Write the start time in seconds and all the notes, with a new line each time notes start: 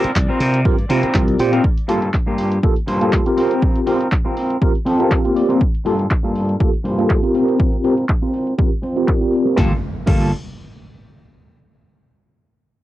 Already playing: D5
0.04 muted slap bass stroke, closed hi-hat, tambourine
0.16 C2, kick, clap, tambourine
0.28 C4 F4 G4 A#4 C5
0.40 C3, open hi-hat, tambourine
0.53 closed hi-hat, tambourine
0.65 G2 C4 F4 G4 A#4, kick, tambourine
0.78 closed hi-hat, tambourine
0.89 C3 C4 F4 G4 A#4, open hi-hat, tambourine
1.03 muted slap bass stroke, closed hi-hat, tambourine
1.14 C2 C4 F4 G4 A#4, kick, clap
1.28 closed hi-hat
1.38 A#2 C4 F4 G4 C5, open hi-hat, tambourine
1.52 C4 F4 G4 A#4, closed hi-hat, tambourine
1.64 kick
1.78 closed hi-hat, tambourine
1.88 G2 A#3 F4 G4 A4, open hi-hat, tambourine
2.02 closed hi-hat, tambourine
2.14 kick, clap
2.26 G2 A#3 F4 G4 A#4, tambourine
2.38 open hi-hat, tambourine
2.52 closed hi-hat, tambourine
2.63 A#3 F4 G4 A4, kick
2.76 closed hi-hat, tambourine
2.87 G2 A#3 F4 C5, open hi-hat, tambourine
3.01 A#3 F4 G4 A4, closed hi-hat
3.13 kick, clap
3.26 C4 F4 G4 A#4, closed hi-hat
3.37 C4 F4 A#4, open hi-hat, tambourine
3.51 closed hi-hat
3.62 kick
3.76 closed hi-hat
3.86 C4 F4 G4 A#4, open hi-hat, tambourine
4.01 closed hi-hat
4.12 kick, clap
4.25 C4 F4 G4 A#4 C5
4.37 open hi-hat, tambourine
4.50 closed hi-hat
4.62 C4 F4 G4 A#4, kick
4.75 closed hi-hat
4.86 C4 F4 A4 G5, open hi-hat
5.00 C4 F4 G4 A#4, closed hi-hat, tambourine
5.11 F5, kick, clap
5.25 A#3 C4 F4 G4, closed hi-hat
5.36 D5, open hi-hat
5.49 C4 F4 A#4, closed hi-hat
5.61 kick
5.75 closed hi-hat
5.85 G2 A#3 F4 G4 A4, open hi-hat
5.99 closed hi-hat
6.11 kick, clap
6.23 G2 A#3 F4 G4 A4 A#4
6.36 open hi-hat
6.49 closed hi-hat, tambourine
6.60 A#3 F4 G4 A4, kick
6.74 closed hi-hat
6.84 G2 A#3 F4 C5, open hi-hat
6.98 A#3 F4 G4 A4, closed hi-hat
7.10 kick, clap
7.22 C4 F4 G4 A#4, closed hi-hat
7.34 C4 F4 A#4, open hi-hat
7.48 closed hi-hat
7.60 kick
7.73 closed hi-hat
7.84 C4 F4 G4 A#4, open hi-hat
7.97 closed hi-hat
8.09 kick, clap
8.22 C4 F4 G4 A#4 C5
8.34 open hi-hat
8.47 closed hi-hat
8.58 C4 F4 G4 A#4, kick
8.72 closed hi-hat
8.83 C4 F4 C5, open hi-hat
8.96 C4 F4 G4 A#4, closed hi-hat
9.08 kick, clap
9.21 C4 F4 G4 A#4, closed hi-hat
9.33 open hi-hat
9.46 C4 F4 A#4, closed hi-hat
9.56 G1 A#3 F4 G4 A4, kick, snare, impact
10.06 G1 A#3 F4 G4 A4, kick, crash